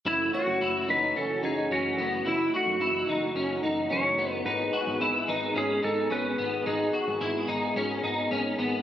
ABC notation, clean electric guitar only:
X:1
M:4/4
L:1/8
Q:1/4=109
K:F#dor
V:1 name="Clean electric guitar"
E F E D C D C B, | E F E D C D C B, | D F E D C D C B, | D F E D C D C B, |]